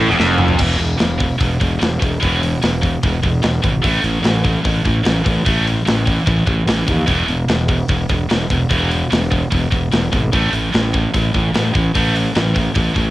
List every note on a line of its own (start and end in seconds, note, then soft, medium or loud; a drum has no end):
0.08 0.19 E1 medium
0.08 0.16 E2 loud
0.17 0.57 F1 medium
0.17 0.57 F2 medium
0.17 snare medium
0.38 mid tom loud
0.48 floor tom medium
0.57 0.75 E1 medium
0.57 0.77 E2 medium
0.57 0.78 B2 loud
0.57 0.78 E3 loud
0.57 kick loud
0.57 crash loud
0.78 0.95 E1 medium
0.78 0.97 E2 medium
0.78 0.98 B2 medium
0.78 open hi-hat medium
0.99 1.31 E1 medium
0.99 1.18 E2 medium
0.99 1.18 B2 medium
0.99 snare loud
0.99 open hi-hat medium
1.19 1.37 E2 medium
1.19 1.38 B2 medium
1.19 kick medium
1.19 open hi-hat soft
1.38 1.56 E1 medium
1.38 1.58 E2 medium
1.38 1.58 B2 medium
1.38 kick loud
1.38 open hi-hat medium
1.60 1.77 E1 medium
1.60 1.78 E2 medium
1.60 1.78 B2 medium
1.60 kick medium
1.60 open hi-hat medium
1.79 1.97 E1 medium
1.79 1.98 E2 medium
1.79 1.99 B2 medium
1.79 snare loud
1.79 open hi-hat medium
1.99 2.17 E1 medium
1.99 2.19 E2 medium
1.99 2.19 B2 medium
1.99 kick loud
1.99 open hi-hat medium
2.20 2.54 E1 medium
2.20 2.39 E2 medium
2.20 2.39 B2 medium
2.20 2.40 E3 medium
2.20 kick loud
2.20 open hi-hat medium
2.40 2.59 E2 medium
2.40 2.59 B2 medium
2.40 open hi-hat medium
2.62 2.94 E1 medium
2.62 2.80 E2 medium
2.62 2.80 B2 medium
2.62 snare loud
2.62 open hi-hat medium
2.81 3.00 E2 medium
2.81 3.00 B2 medium
2.81 kick medium
2.81 open hi-hat medium
3.03 3.19 E1 medium
3.03 3.21 E2 medium
3.03 3.21 B2 medium
3.03 kick loud
3.03 open hi-hat medium
3.23 3.39 E1 loud
3.23 3.41 E2 medium
3.23 3.41 B2 medium
3.23 kick medium
3.23 open hi-hat medium
3.42 3.59 E1 medium
3.42 3.61 E2 medium
3.42 3.61 B2 medium
3.42 snare loud
3.42 open hi-hat medium
3.62 3.79 G#1 medium
3.62 3.81 E2 medium
3.62 3.81 B2 medium
3.62 kick loud
3.62 open hi-hat medium
3.82 4.00 A1 medium
3.82 4.00 A2 medium
3.82 4.01 E3 loud
3.82 4.02 A3 loud
3.82 kick loud
3.82 open hi-hat medium
4.02 4.20 A1 medium
4.02 4.21 A2 medium
4.02 4.21 E3 medium
4.02 open hi-hat medium
4.23 4.55 A1 medium
4.23 4.42 A2 medium
4.23 4.42 E3 medium
4.23 snare loud
4.23 open hi-hat medium
4.44 4.62 A2 medium
4.44 4.63 E3 medium
4.44 kick medium
4.44 open hi-hat medium
4.64 4.81 A1 medium
4.64 4.83 A2 medium
4.64 4.83 E3 medium
4.64 kick medium
4.64 open hi-hat medium
4.85 5.01 A1 medium
4.85 5.03 A2 medium
4.85 5.03 E3 medium
4.85 kick medium
4.85 open hi-hat soft
5.04 5.21 A1 medium
5.04 5.23 A2 medium
5.04 5.23 E3 medium
5.04 snare loud
5.04 open hi-hat medium
5.25 5.41 A1 medium
5.25 5.43 A2 medium
5.25 5.44 E3 medium
5.25 kick loud
5.25 open hi-hat medium
5.45 5.78 A1 medium
5.45 5.64 A2 medium
5.45 5.65 E3 medium
5.45 5.65 A3 loud
5.45 kick medium
5.45 open hi-hat medium
5.66 5.84 A2 medium
5.66 5.84 E3 medium
5.66 open hi-hat medium
5.85 6.18 A1 medium
5.85 6.04 A2 medium
5.85 6.04 E3 medium
5.85 snare loud
5.85 open hi-hat medium
6.06 6.24 A2 medium
6.06 6.25 E3 medium
6.06 kick medium
6.06 open hi-hat medium
6.26 6.42 A1 medium
6.26 6.45 A2 medium
6.26 6.45 E3 medium
6.26 kick loud
6.26 open hi-hat medium
6.46 6.63 A1 medium
6.46 6.65 A2 medium
6.46 6.65 E3 medium
6.46 kick medium
6.46 open hi-hat medium
6.66 6.82 A1 medium
6.66 6.86 A2 medium
6.66 6.86 E3 medium
6.66 snare loud
6.66 open hi-hat medium
6.87 7.04 D#2 medium
6.87 7.05 A2 medium
6.87 7.05 E3 medium
6.87 kick medium
6.87 open hi-hat medium
7.06 7.24 E1 medium
7.06 7.26 E2 medium
7.06 7.26 B2 medium
7.06 7.26 E3 loud
7.06 kick loud
7.06 open hi-hat medium
7.28 7.44 E1 medium
7.28 7.46 E2 medium
7.28 7.46 B2 medium
7.28 open hi-hat medium
7.48 7.80 E1 medium
7.48 7.67 E2 medium
7.48 7.67 B2 medium
7.48 snare loud
7.48 open hi-hat medium
7.68 7.87 E2 medium
7.68 7.87 B2 medium
7.68 kick medium
7.68 open hi-hat soft
7.88 8.05 E1 medium
7.88 8.07 E2 medium
7.88 8.08 B2 medium
7.88 kick loud
7.88 open hi-hat medium
8.09 8.25 E1 medium
8.09 8.28 E2 medium
8.09 8.28 B2 medium
8.09 kick medium
8.09 open hi-hat medium
8.29 8.46 E1 medium
8.29 8.48 E2 medium
8.29 8.48 B2 medium
8.29 snare loud
8.29 open hi-hat medium
8.50 8.66 E1 medium
8.50 8.68 E2 medium
8.50 8.69 B2 medium
8.50 kick medium
8.50 open hi-hat medium
8.69 9.02 E1 medium
8.69 8.89 E2 medium
8.69 8.89 B2 medium
8.69 8.90 E3 loud
8.69 kick loud
8.69 open hi-hat medium
8.91 9.09 E2 medium
8.91 9.09 B2 medium
8.91 open hi-hat medium
9.11 9.43 E1 medium
9.11 9.29 E2 medium
9.11 9.29 B2 medium
9.11 snare loud
9.11 open hi-hat medium
9.31 9.49 E2 medium
9.31 9.50 B2 medium
9.31 kick medium
9.31 open hi-hat medium
9.51 9.67 E1 medium
9.51 9.69 E2 medium
9.51 9.69 B2 medium
9.51 kick loud
9.51 open hi-hat medium
9.71 9.87 E1 medium
9.71 9.89 E2 medium
9.71 9.90 B2 medium
9.71 kick medium
9.71 open hi-hat medium
9.92 10.08 E1 medium
9.92 10.10 E2 medium
9.92 10.10 B2 medium
9.92 snare loud
9.92 open hi-hat medium
10.12 10.28 G#1 medium
10.12 10.30 E2 medium
10.12 10.30 B2 medium
10.12 kick medium
10.12 open hi-hat medium
10.32 10.49 A1 medium
10.32 10.51 A2 medium
10.32 10.52 E3 medium
10.32 10.52 A3 medium
10.32 kick loud
10.32 open hi-hat medium
10.52 10.68 A1 medium
10.52 10.71 A2 medium
10.52 10.71 E3 medium
10.52 open hi-hat medium
10.73 11.05 A1 medium
10.73 10.91 A2 medium
10.73 10.91 E3 medium
10.73 snare loud
10.73 open hi-hat medium
10.94 11.12 A2 medium
10.94 11.12 E3 medium
10.94 kick medium
10.94 open hi-hat soft
11.14 11.30 A1 medium
11.14 11.32 A2 medium
11.14 11.32 E3 medium
11.14 kick loud
11.14 open hi-hat medium
11.34 11.50 A1 loud
11.34 11.52 A2 medium
11.34 11.53 E3 medium
11.34 kick medium
11.34 open hi-hat soft
11.54 11.71 A1 medium
11.54 11.72 A2 medium
11.54 11.72 E3 medium
11.54 snare medium
11.54 open hi-hat medium
11.73 11.90 A1 medium
11.73 11.92 A2 medium
11.73 11.92 E3 medium
11.73 kick medium
11.73 open hi-hat medium
11.94 12.27 A1 medium
11.94 12.14 A2 medium
11.94 12.14 E3 medium
11.94 12.14 A3 medium
11.94 kick loud
11.94 open hi-hat medium
12.15 12.33 A2 medium
12.15 12.34 E3 medium
12.15 open hi-hat medium
12.35 12.67 A1 medium
12.35 12.53 A2 medium
12.35 12.54 E3 medium
12.35 snare loud
12.35 open hi-hat medium
12.55 12.73 A2 medium
12.55 12.74 E3 medium
12.55 kick medium
12.55 open hi-hat medium
12.75 12.92 A1 medium
12.75 12.93 A2 medium
12.75 12.94 E3 medium
12.75 kick loud
12.75 open hi-hat medium
12.95 13.10 A1 medium
12.95 13.10 A2 medium
12.95 13.10 E3 medium
12.95 kick medium
12.95 open hi-hat medium